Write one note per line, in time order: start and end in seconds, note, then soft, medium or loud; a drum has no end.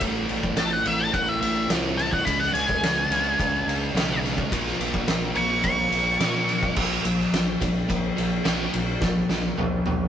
0.01 0.26 A1 loud
0.01 0.84 A2 medium
0.01 0.86 E3 loud
0.01 0.83 A3 loud
0.01 kick loud
0.01 ride medium
0.29 0.55 A1 medium
0.29 ride medium
0.43 kick medium
0.57 0.82 A1 medium
0.57 0.73 A5 medium
0.57 snare loud
0.57 ride medium
0.73 0.86 F#5 medium
0.85 1.11 A1 medium
0.85 1.68 A2 medium
0.85 1.69 E3 medium
0.85 1.68 A3 medium
0.85 1.00 E5 medium
0.85 ride medium
1.00 1.14 A5 medium
1.14 1.39 A1 medium
1.14 1.29 F#5 loud
1.14 kick loud
1.14 ride medium
1.29 1.40 E5 loud
1.41 1.66 A1 medium
1.41 1.69 E5 loud
1.41 ride medium
1.69 2.19 C2 medium
1.69 2.24 A2 medium
1.69 2.25 E3 medium
1.69 2.25 A3 medium
1.69 snare loud
1.69 ride loud
1.98 2.12 A5 loud
1.98 ride medium
2.11 2.25 F#5 medium
2.11 kick medium
2.25 2.52 C#2 loud
2.25 3.08 C#3 medium
2.25 3.09 G#3 medium
2.25 3.10 C#4 loud
2.25 2.39 B5 loud
2.25 kick loud
2.25 ride loud
2.40 2.53 F#5 medium
2.40 snare soft
2.54 2.79 C#2 medium
2.54 4.19 G#5 medium
2.54 ride medium
2.69 kick medium
2.82 3.07 C#2 medium
2.82 snare loud
2.82 ride loud
3.10 3.35 C#2 medium
3.10 3.93 C#3 medium
3.10 3.94 G#3 medium
3.10 3.96 C#4 medium
3.10 ride medium
3.39 3.64 C#2 loud
3.39 kick loud
3.39 ride medium
3.67 3.91 C#2 medium
3.67 ride medium
3.94 4.44 B1 loud
3.94 4.49 C#3 medium
3.94 4.50 G#3 medium
3.94 4.52 C#4 medium
3.94 snare loud
3.94 ride loud
4.26 snare soft
4.26 ride medium
4.38 kick medium
4.50 4.76 A#1 loud
4.50 5.34 A#2 medium
4.50 5.34 F3 medium
4.50 5.34 A#3 medium
4.50 kick loud
4.50 ride loud
4.67 snare soft
4.79 5.04 A#1 medium
4.79 ride medium
4.94 kick medium
5.08 5.32 A#1 medium
5.08 snare loud
5.08 ride medium
5.35 5.60 A#1 medium
5.35 6.18 A#2 medium
5.35 6.19 F3 medium
5.35 6.18 A#3 medium
5.35 5.64 C#6 medium
5.35 ride medium
5.64 5.89 A#1 medium
5.64 6.74 C#6 loud
5.64 kick medium
5.64 ride medium
5.91 6.16 A#1 medium
5.91 ride medium
6.19 6.74 A#2 medium
6.19 6.70 A#2 medium
6.19 6.75 F3 medium
6.19 6.76 A#3 medium
6.19 snare loud
6.19 ride loud
6.49 ride medium
6.63 kick loud
6.76 6.98 A#1 loud
6.76 7.03 A#2 medium
6.76 7.03 F3 loud
6.76 7.04 A#3 loud
6.76 kick loud
6.76 crash loud
7.04 7.25 A#1 medium
7.04 7.30 A#2 medium
7.04 7.30 F3 medium
7.04 ride medium
7.20 snare soft
7.33 7.54 A#1 medium
7.33 7.58 A#2 medium
7.33 7.58 F3 medium
7.33 snare loud
7.33 ride loud
7.60 7.82 A#1 medium
7.60 7.86 A#2 medium
7.60 7.86 F3 medium
7.60 kick medium
7.60 ride medium
7.89 8.11 A#1 medium
7.89 8.14 A#2 medium
7.89 8.15 F3 medium
7.89 kick medium
7.89 ride medium
8.17 8.39 A#1 medium
8.17 8.43 A#2 medium
8.17 8.43 F3 medium
8.17 ride medium
8.44 8.67 A#1 medium
8.44 8.71 A#2 medium
8.44 8.72 F3 loud
8.44 8.72 A#3 medium
8.44 snare loud
8.44 ride loud
8.73 8.95 A#1 medium
8.73 8.99 A#2 medium
8.73 8.99 F3 medium
8.73 ride medium
9.01 9.23 A#1 loud
9.01 9.27 A#2 medium
9.01 9.27 F3 medium
9.01 kick loud
9.01 snare medium
9.29 9.51 A#1 medium
9.29 9.55 A#2 medium
9.29 9.55 F3 medium
9.29 snare medium
9.58 9.79 A#1 medium
9.58 9.83 A#2 medium
9.58 9.84 F3 medium
9.58 high tom medium
9.86 10.07 A#1 medium
9.86 10.08 A#2 medium
9.86 10.08 F3 medium
9.86 high tom medium